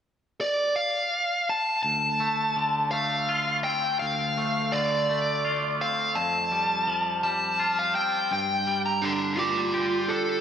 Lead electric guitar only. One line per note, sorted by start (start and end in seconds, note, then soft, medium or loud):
0.41 0.74 D5 soft
0.76 1.50 F5 soft
1.49 1.82 A5 soft
1.83 2.95 A5 medium
2.91 3.59 F5 medium
3.64 3.99 G5 soft
3.99 4.74 F5 medium
4.72 5.83 D5 medium
5.81 6.17 F5 soft
6.15 7.22 A5 medium
7.23 7.79 A5 medium
7.79 7.95 F5 medium
7.95 8.32 G5 medium
8.33 8.82 G5 medium
8.86 9.05 A#5 medium
9.02 9.36 D4 soft
9.02 9.39 C6 medium
9.37 10.11 F4 medium
9.37 10.15 D6 medium
10.08 10.41 A4 medium